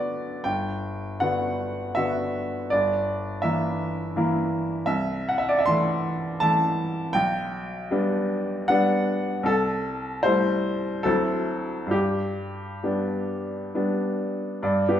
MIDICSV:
0, 0, Header, 1, 2, 480
1, 0, Start_track
1, 0, Tempo, 858369
1, 248, Time_signature, 3, 2, 24, 8
1, 248, Tempo, 759494
1, 1688, Tempo, 716846
1, 3128, Tempo, 792602
1, 3608, Tempo, 740741
1, 5048, Tempo, 780234
1, 6488, Tempo, 809717
1, 6968, Tempo, 898204
1, 8408, Tempo, 881057
1, 8888, Tempo, 782269
1, 9125, End_track
2, 0, Start_track
2, 0, Title_t, "Upright piano"
2, 0, Program_c, 0, 0
2, 0, Control_c, 0, 64, 127
2, 0, Note_on_c, 0, 35, 40
2, 0, Note_on_c, 0, 50, 34
2, 0, Note_on_c, 0, 59, 34
2, 0, Note_on_c, 0, 66, 33
2, 0, Note_on_c, 0, 71, 56
2, 0, Note_on_c, 0, 74, 70
2, 231, Note_off_c, 0, 50, 0
2, 232, Note_off_c, 0, 59, 0
2, 235, Note_off_c, 0, 66, 0
2, 246, Note_on_c, 0, 79, 65
2, 250, Note_off_c, 0, 74, 0
2, 253, Note_on_c, 0, 31, 38
2, 258, Control_c, 0, 64, 0
2, 262, Note_off_c, 0, 35, 0
2, 264, Note_off_c, 0, 71, 0
2, 384, Control_c, 0, 64, 127
2, 721, Note_off_c, 0, 31, 0
2, 727, Note_on_c, 0, 78, 66
2, 731, Note_off_c, 0, 79, 0
2, 734, Note_on_c, 0, 50, 31
2, 736, Note_on_c, 0, 59, 33
2, 744, Note_on_c, 0, 66, 34
2, 1185, Note_off_c, 0, 50, 0
2, 1186, Note_off_c, 0, 59, 0
2, 1190, Note_off_c, 0, 66, 0
2, 1199, Note_on_c, 0, 76, 69
2, 1205, Note_on_c, 0, 50, 35
2, 1207, Note_off_c, 0, 78, 0
2, 1211, Note_on_c, 0, 66, 38
2, 1214, Note_on_c, 0, 59, 33
2, 1660, Note_off_c, 0, 50, 0
2, 1663, Note_off_c, 0, 66, 0
2, 1665, Note_off_c, 0, 59, 0
2, 1676, Note_on_c, 0, 74, 68
2, 1682, Note_off_c, 0, 76, 0
2, 1688, Note_on_c, 0, 31, 44
2, 1699, Control_c, 0, 64, 0
2, 1804, Control_c, 0, 64, 127
2, 2150, Note_off_c, 0, 31, 0
2, 2154, Note_on_c, 0, 76, 63
2, 2158, Note_off_c, 0, 74, 0
2, 2163, Note_on_c, 0, 52, 36
2, 2165, Note_on_c, 0, 58, 34
2, 2167, Note_on_c, 0, 64, 37
2, 2624, Note_off_c, 0, 52, 0
2, 2625, Note_off_c, 0, 58, 0
2, 2626, Note_off_c, 0, 64, 0
2, 2646, Note_off_c, 0, 76, 0
2, 2652, Note_on_c, 0, 52, 38
2, 2657, Note_on_c, 0, 58, 39
2, 2657, Note_on_c, 0, 64, 39
2, 3101, Note_off_c, 0, 52, 0
2, 3103, Note_off_c, 0, 58, 0
2, 3103, Note_off_c, 0, 64, 0
2, 3119, Note_on_c, 0, 76, 69
2, 3124, Note_on_c, 0, 36, 46
2, 3138, Control_c, 0, 64, 0
2, 3254, Control_c, 0, 64, 127
2, 3376, Note_off_c, 0, 76, 0
2, 3378, Note_on_c, 0, 78, 57
2, 3436, Note_on_c, 0, 76, 61
2, 3437, Note_off_c, 0, 78, 0
2, 3495, Note_off_c, 0, 76, 0
2, 3500, Note_on_c, 0, 74, 62
2, 3554, Note_off_c, 0, 74, 0
2, 3561, Note_on_c, 0, 76, 62
2, 3592, Note_off_c, 0, 36, 0
2, 3602, Note_on_c, 0, 84, 81
2, 3612, Note_off_c, 0, 76, 0
2, 3615, Note_on_c, 0, 52, 37
2, 3621, Note_on_c, 0, 57, 39
2, 3623, Note_on_c, 0, 64, 38
2, 4061, Note_off_c, 0, 52, 0
2, 4064, Note_off_c, 0, 57, 0
2, 4065, Note_off_c, 0, 64, 0
2, 4080, Note_off_c, 0, 84, 0
2, 4085, Note_on_c, 0, 81, 84
2, 4094, Note_on_c, 0, 57, 41
2, 4097, Note_on_c, 0, 52, 39
2, 4097, Note_on_c, 0, 64, 41
2, 4540, Note_off_c, 0, 57, 0
2, 4541, Note_off_c, 0, 52, 0
2, 4541, Note_off_c, 0, 64, 0
2, 4557, Note_on_c, 0, 79, 87
2, 4561, Note_off_c, 0, 81, 0
2, 4568, Note_on_c, 0, 35, 50
2, 4571, Control_c, 0, 64, 0
2, 4688, Control_c, 0, 64, 127
2, 5037, Note_off_c, 0, 35, 0
2, 5062, Note_on_c, 0, 55, 41
2, 5065, Note_on_c, 0, 62, 41
2, 5066, Note_on_c, 0, 59, 39
2, 5512, Note_off_c, 0, 55, 0
2, 5514, Note_off_c, 0, 62, 0
2, 5515, Note_off_c, 0, 59, 0
2, 5528, Note_off_c, 0, 79, 0
2, 5535, Note_on_c, 0, 78, 83
2, 5545, Note_on_c, 0, 55, 41
2, 5547, Note_on_c, 0, 59, 43
2, 5550, Note_on_c, 0, 62, 44
2, 5988, Note_off_c, 0, 55, 0
2, 5989, Note_off_c, 0, 59, 0
2, 5990, Note_off_c, 0, 62, 0
2, 5999, Note_on_c, 0, 36, 47
2, 6008, Note_off_c, 0, 78, 0
2, 6014, Note_on_c, 0, 69, 74
2, 6016, Control_c, 0, 64, 0
2, 6130, Control_c, 0, 64, 127
2, 6470, Note_off_c, 0, 36, 0
2, 6488, Note_on_c, 0, 72, 73
2, 6493, Note_off_c, 0, 69, 0
2, 6498, Note_on_c, 0, 55, 37
2, 6503, Note_on_c, 0, 57, 37
2, 6504, Note_on_c, 0, 64, 41
2, 6949, Note_off_c, 0, 55, 0
2, 6952, Note_off_c, 0, 57, 0
2, 6952, Note_off_c, 0, 64, 0
2, 6964, Note_on_c, 0, 69, 71
2, 6968, Note_off_c, 0, 72, 0
2, 6975, Note_on_c, 0, 38, 47
2, 6977, Note_on_c, 0, 54, 35
2, 6978, Note_on_c, 0, 60, 34
2, 6979, Control_c, 0, 64, 0
2, 6981, Note_on_c, 0, 64, 37
2, 7065, Control_c, 0, 64, 127
2, 7410, Note_on_c, 0, 43, 45
2, 7418, Note_off_c, 0, 54, 0
2, 7419, Note_off_c, 0, 60, 0
2, 7420, Note_off_c, 0, 64, 0
2, 7425, Note_off_c, 0, 38, 0
2, 7434, Note_off_c, 0, 69, 0
2, 7435, Note_on_c, 0, 67, 58
2, 7448, Control_c, 0, 64, 0
2, 7560, Control_c, 0, 64, 127
2, 7897, Note_off_c, 0, 43, 0
2, 7928, Note_on_c, 0, 55, 30
2, 7931, Note_on_c, 0, 59, 30
2, 7934, Note_on_c, 0, 62, 33
2, 8388, Note_off_c, 0, 55, 0
2, 8389, Note_off_c, 0, 59, 0
2, 8391, Note_off_c, 0, 62, 0
2, 8415, Note_on_c, 0, 55, 31
2, 8417, Note_on_c, 0, 59, 34
2, 8419, Note_on_c, 0, 62, 37
2, 8655, Note_off_c, 0, 67, 0
2, 8869, Note_off_c, 0, 55, 0
2, 8870, Note_off_c, 0, 59, 0
2, 8871, Note_off_c, 0, 62, 0
2, 8896, Note_on_c, 0, 43, 53
2, 8898, Control_c, 0, 64, 0
2, 8899, Note_on_c, 0, 74, 46
2, 9019, Control_c, 0, 64, 127
2, 9055, Note_on_c, 0, 67, 45
2, 9056, Note_on_c, 0, 59, 44
2, 9125, Note_off_c, 0, 43, 0
2, 9125, Note_off_c, 0, 59, 0
2, 9125, Note_off_c, 0, 67, 0
2, 9125, Note_off_c, 0, 74, 0
2, 9125, End_track
0, 0, End_of_file